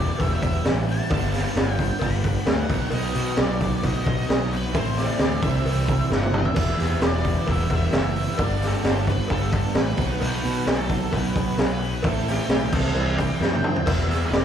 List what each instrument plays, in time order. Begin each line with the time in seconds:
Already playing: distorted electric guitar E3 B3 E4, overdriven electric guitar E3 G3 B3 E4, tonewheel organ B3 E4 G4 B4, lead electric guitar D5
0.00 distorted electric guitar G3
0.18 picked electric bass E1, distorted electric guitar E3 G3 B3 E4, lead electric guitar E5, kick, open hi-hat, cowbell
0.41 picked electric bass E1, distorted electric guitar G3 B3 E4, kick, open hi-hat
0.64 picked electric bass A1, lead electric guitar B5, snare, open hi-hat, cowbell
0.87 distorted electric guitar G3 B3 E4, open hi-hat
0.91 lead electric guitar A5
1.10 picked electric bass G1, distorted electric guitar G2 D3 G3 B3 D4, tonewheel organ B3 D4 G4 B4, kick, open hi-hat, cowbell
1.34 snare, open hi-hat
1.54 picked electric bass G1, distorted electric guitar G2 D3 G3 B3 D4, snare, open hi-hat, cowbell
1.58 lead electric guitar G5
1.78 distorted electric guitar G3 B3 D4, kick, open hi-hat
1.99 picked electric bass G1, distorted electric guitar D3 G3 B3 D4, kick, open hi-hat, cowbell
2.03 lead electric guitar B5
2.22 distorted electric guitar G3 B3 D4, kick, open hi-hat
2.46 picked electric bass D2, lead electric guitar F#5, snare, open hi-hat, cowbell
2.69 picked electric bass B1, distorted electric guitar B2 F#3 B3 D#4, overdriven electric guitar D#3, tonewheel organ B3 D#4 F#4 B4, kick, open hi-hat
2.91 picked electric bass B1, distorted electric guitar B2 F#3 B3 D#4, lead electric guitar D#5, open hi-hat, cowbell
3.14 picked electric bass B2, open hi-hat
3.37 picked electric bass B1, distorted electric guitar B2 F#3 B3 D#4, lead electric guitar D5, snare, open hi-hat, cowbell
3.59 distorted electric guitar F#3 B3 D#4, kick, open hi-hat
3.77 lead electric guitar D5
3.82 picked electric bass B1, distorted electric guitar B2 F#3 B3 D#4, lead electric guitar D#5, kick, open hi-hat, cowbell
4.05 picked electric bass B1, distorted electric guitar F#3 B3 D#4, kick, open hi-hat
4.29 picked electric bass B1, snare, open hi-hat, cowbell
4.50 distorted electric guitar F#3 B3 D#4, lead electric guitar B4, open hi-hat
4.72 picked electric bass A1, distorted electric guitar A2 E3 A3 C4 E4, tonewheel organ C4 E4 A4 C5, kick, open hi-hat, cowbell
4.78 lead electric guitar C5
4.97 lead electric guitar D5, snare, open hi-hat
5.18 picked electric bass D2, distorted electric guitar A2 E3 A3 C4 E4, snare, open hi-hat, cowbell
5.41 picked electric bass C2, distorted electric guitar C3 E3 G3 C4 E4, tonewheel organ C4 E4 G4 C5, lead electric guitar E5, kick, open hi-hat
5.64 picked electric bass C2, distorted electric guitar E3 G3 C4 E4, open hi-hat, cowbell
5.86 distorted electric guitar G3 C4 E4, kick, open hi-hat
6.10 picked electric bass G1, snare, cowbell
6.15 lead electric guitar F#5
6.23 high tom
6.32 distorted electric guitar G3 C4 E4, mid tom
6.38 lead electric guitar E5
6.45 floor tom
6.54 picked electric bass E1, distorted electric guitar E3 G3 B3 E4, tonewheel organ B3 E4 G4 B4, kick, crash, cowbell
6.78 picked electric bass E2, snare, open hi-hat
7.01 picked electric bass E1, distorted electric guitar E3 G3 B3 E4, snare, open hi-hat, cowbell
7.05 lead electric guitar D5
7.22 distorted electric guitar G3 B3 E4, kick, open hi-hat
7.45 picked electric bass E1, distorted electric guitar E3 G3 B3 E4, kick, open hi-hat, cowbell
7.51 lead electric guitar E5
7.68 picked electric bass E1, distorted electric guitar G3 B3 E4, kick, open hi-hat
7.76 lead electric guitar E5
7.91 picked electric bass F#1, snare, open hi-hat, cowbell
7.98 lead electric guitar E5
8.15 distorted electric guitar G3 B3 E4, open hi-hat
8.36 picked electric bass G1, distorted electric guitar G2 D3 G3 B3 D4, tonewheel organ B3 D4 G4 B4, kick, open hi-hat, cowbell
8.44 lead electric guitar D5
8.62 snare, open hi-hat
8.67 lead electric guitar A4
8.82 picked electric bass G1, distorted electric guitar G2 D3 G3 B3 D4, snare, open hi-hat, cowbell
9.05 distorted electric guitar G3 B3 D4, kick, open hi-hat
9.09 lead electric guitar B4
9.27 picked electric bass G1, distorted electric guitar D3 G3 B3 D4, lead electric guitar A4, kick, open hi-hat, cowbell
9.52 distorted electric guitar G3 B3 D4, kick, open hi-hat
9.74 picked electric bass A1, snare, open hi-hat, cowbell
9.78 lead electric guitar B4
9.96 picked electric bass B1, distorted electric guitar B2 D#3 F#3 B3 D#4, tonewheel organ B3 D#4 F#4 B4, kick, open hi-hat
10.20 picked electric bass B1, distorted electric guitar B2 D#3 F#3 B3 D#4, lead electric guitar B4, open hi-hat, cowbell
10.44 picked electric bass B2, open hi-hat
10.66 picked electric bass B1, distorted electric guitar B2 D#3 F#3 B3 D#4, lead electric guitar A4, snare, open hi-hat, cowbell
10.88 distorted electric guitar F#3 B3 D#4, kick, open hi-hat
11.11 picked electric bass B1, distorted electric guitar D#3 F#3 B3 D#4, lead electric guitar B4, kick, open hi-hat, cowbell
11.35 picked electric bass B1, distorted electric guitar F#3 B3 D#4, kick, open hi-hat
11.57 picked electric bass B1, lead electric guitar B4, snare, open hi-hat, cowbell
11.79 distorted electric guitar F#3 B3 D#4, open hi-hat
12.02 picked electric bass A1, distorted electric guitar A2 E3 A3 C4 E4, tonewheel organ C4 E4 A4 C5, lead electric guitar A4, kick, open hi-hat, cowbell
12.28 lead electric guitar G4, snare, open hi-hat
12.48 picked electric bass B1, distorted electric guitar A2 E3 A3 C4 E4, snare, open hi-hat, cowbell
12.70 picked electric bass C2, distorted electric guitar C3 E3 G3 C4 E4, tonewheel organ C4 E4 G4 C5, kick, crash
12.74 lead electric guitar A4
12.94 picked electric bass C2, distorted electric guitar E3 G3 C4 E4, lead electric guitar G4, cowbell
13.16 distorted electric guitar G3 C4 E4, kick, open hi-hat
13.40 picked electric bass F#2, lead electric guitar G5, snare, cowbell
13.53 high tom
13.62 distorted electric guitar G3 C4 E4, mid tom
13.76 floor tom
13.85 picked electric bass E1, distorted electric guitar E3 G3 B3 E4, tonewheel organ B3 E4 G4 B4, lead electric guitar E5, kick, crash, cowbell
14.07 picked electric bass E2, lead electric guitar E5, snare, open hi-hat
14.25 lead electric guitar B4
14.30 picked electric bass E1, distorted electric guitar E3 G3 B3 E4, lead electric guitar D5, snare, open hi-hat, cowbell